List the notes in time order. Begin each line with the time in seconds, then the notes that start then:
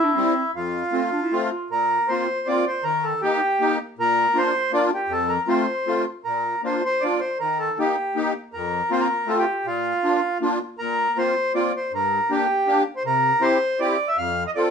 Already playing: E4
0.04 D4
0.14 G3 C4 E4
0.54 F2 F4
0.91 A3 C4 F4
1.13 D4
1.22 E4
1.32 A3 C4 F4
1.70 A#2 A#4
2.08 A#3 C4 F4 C5
2.47 A#3 C4 F4 D5
2.67 C5
2.83 D#3 A#4
3.04 A4
3.22 A#3 D#4 G4
3.60 A#3 D#4 G4
3.99 A#2 A#4
4.33 A#3 D4 F4
4.38 C5
4.72 A#3 D4 F4 D5
4.94 G4
5.08 F2 A4
5.29 A#4
5.48 A3 C4 F4 C5
5.87 A3 C4 F4
6.25 A#2 A#4
6.63 A#3 D4 F4 C5
6.85 C5
7.01 A#3 D4 F4 D5
7.20 C5
7.40 D#3 A#4
7.59 A4
7.79 A#3 D#4 G4
8.15 A#3 D#4 G4
8.53 F2 A#4
8.91 A#3 C4 F4 C5
9.00 A#4
9.27 A3 C4 F4 A4
9.38 G4
9.65 A#2 F4
10.03 A#3 D4 F4
10.41 A#3 D4 F4
10.79 A#2 A#4
11.16 A#3 C4 F4 C5
11.54 A#3 C4 F4 D5
11.77 C5
11.93 G2 A#4
12.30 A#3 D4 G4
12.67 A#3 D4 G4
12.96 C5
13.05 C3 A#4
13.41 C4 E4 G4 C5
13.80 C4 E4 G4 D5
14.08 E5
14.17 F2 F5
14.47 D#5
14.55 C4 F4 A4 D5